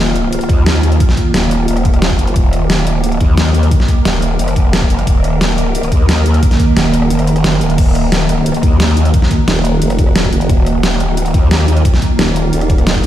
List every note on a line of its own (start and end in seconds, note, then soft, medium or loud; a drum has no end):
0.00 0.48 D#1 loud
0.00 13.07 D#3 medium
0.00 13.07 A#3 medium
0.00 2.34 F4 loud
0.16 closed hi-hat medium
0.33 closed hi-hat medium
0.41 closed hi-hat soft
0.49 0.99 D#2 loud
0.49 kick loud
0.49 closed hi-hat medium
0.66 snare loud
0.66 closed hi-hat medium
0.83 closed hi-hat medium
0.92 closed hi-hat soft
1.00 kick loud
1.00 closed hi-hat medium
1.09 snare soft
1.17 kick medium
1.17 closed hi-hat medium
1.34 1.67 D#1 loud
1.34 snare loud
1.34 closed hi-hat medium
1.51 closed hi-hat medium
1.68 2.18 D#1 loud
1.68 closed hi-hat medium
1.77 cross-stick soft
1.77 closed hi-hat soft
1.85 kick loud
1.85 closed hi-hat medium
1.94 cross-stick soft
1.94 closed hi-hat soft
2.02 snare loud
2.02 closed hi-hat medium
2.10 kick medium
2.19 2.35 F#1 loud
2.19 closed hi-hat medium
2.27 closed hi-hat soft
2.36 2.95 D#1 loud
2.36 7.76 A#4 loud
2.36 kick loud
2.36 closed hi-hat medium
2.53 cross-stick soft
2.53 closed hi-hat medium
2.70 snare loud
2.70 closed hi-hat medium
2.87 closed hi-hat medium
2.95 3.19 D1 loud
3.04 closed hi-hat medium
3.12 closed hi-hat soft
3.21 3.70 D#2 loud
3.21 kick loud
3.21 closed hi-hat medium
3.38 snare loud
3.38 closed hi-hat medium
3.54 closed hi-hat medium
3.63 closed hi-hat soft
3.71 kick loud
3.71 closed hi-hat medium
3.80 snare soft
3.88 kick medium
3.88 closed hi-hat medium
4.05 4.38 D#1 loud
4.05 snare loud
4.05 closed hi-hat medium
4.22 closed hi-hat medium
4.39 4.89 F1 medium
4.39 closed hi-hat medium
4.48 cross-stick soft
4.48 closed hi-hat soft
4.56 kick loud
4.56 closed hi-hat medium
4.65 cross-stick soft
4.73 snare loud
4.73 closed hi-hat loud
4.82 kick medium
4.90 5.06 F#1 loud
4.90 closed hi-hat medium
4.99 closed hi-hat soft
5.07 5.90 D#1 loud
5.07 kick loud
5.07 closed hi-hat medium
5.24 cross-stick soft
5.24 closed hi-hat medium
5.41 snare loud
5.41 closed hi-hat medium
5.58 closed hi-hat medium
5.75 closed hi-hat loud
5.83 closed hi-hat soft
5.92 6.41 D#2 loud
5.92 kick medium
5.92 closed hi-hat medium
6.09 snare loud
6.09 closed hi-hat medium
6.26 closed hi-hat medium
6.34 closed hi-hat soft
6.43 kick loud
6.43 closed hi-hat loud
6.51 snare soft
6.51 closed hi-hat soft
6.60 kick medium
6.60 closed hi-hat medium
6.77 7.09 D#1 loud
6.77 snare loud
6.77 closed hi-hat medium
6.94 closed hi-hat medium
7.02 cross-stick medium
7.10 7.43 F1 medium
7.10 closed hi-hat loud
7.19 cross-stick soft
7.19 closed hi-hat soft
7.27 closed hi-hat medium
7.36 cross-stick soft
7.36 closed hi-hat soft
7.44 7.60 F#1 medium
7.44 snare loud
7.44 closed hi-hat loud
7.61 7.77 D#1 loud
7.61 closed hi-hat medium
7.70 closed hi-hat soft
7.78 8.62 D#1 loud
7.78 10.48 F#4 loud
7.78 kick loud
7.78 closed hi-hat loud
7.78 crash medium
7.95 cross-stick soft
7.95 closed hi-hat medium
8.12 snare loud
8.12 closed hi-hat loud
8.29 closed hi-hat medium
8.46 closed hi-hat loud
8.54 closed hi-hat soft
8.63 9.12 D#2 loud
8.63 kick loud
8.63 closed hi-hat medium
8.80 snare loud
8.80 closed hi-hat loud
8.97 closed hi-hat medium
9.05 closed hi-hat soft
9.14 kick loud
9.14 closed hi-hat loud
9.22 snare soft
9.31 kick medium
9.31 closed hi-hat medium
9.48 9.80 D#1 loud
9.48 snare loud
9.48 closed hi-hat medium
9.65 closed hi-hat medium
9.82 10.31 F1 loud
9.82 closed hi-hat loud
9.90 cross-stick soft
9.90 closed hi-hat soft
9.99 kick loud
9.99 closed hi-hat medium
10.07 cross-stick soft
10.16 snare loud
10.16 closed hi-hat medium
10.24 kick medium
10.33 10.48 F#1 medium
10.33 closed hi-hat medium
10.41 closed hi-hat soft
10.49 11.08 D#1 loud
10.49 13.07 F4 loud
10.49 kick loud
10.49 closed hi-hat medium
10.66 cross-stick soft
10.66 closed hi-hat medium
10.83 snare loud
10.83 closed hi-hat medium
11.00 closed hi-hat medium
11.08 11.33 D1 loud
11.17 closed hi-hat medium
11.26 closed hi-hat soft
11.34 11.84 D#2 loud
11.34 kick loud
11.34 closed hi-hat medium
11.51 snare loud
11.51 closed hi-hat medium
11.68 closed hi-hat medium
11.77 closed hi-hat soft
11.85 kick loud
11.85 closed hi-hat medium
11.94 snare soft
12.02 kick medium
12.02 closed hi-hat medium
12.19 12.51 D#1 loud
12.19 snare loud
12.19 closed hi-hat medium
12.36 closed hi-hat medium
12.53 13.02 D#1 loud
12.53 closed hi-hat medium
12.61 cross-stick soft
12.61 closed hi-hat soft
12.70 kick loud
12.70 closed hi-hat medium
12.78 cross-stick soft
12.78 closed hi-hat soft
12.87 snare loud
12.87 closed hi-hat medium
12.95 kick medium
13.04 13.07 F#1 loud
13.04 closed hi-hat medium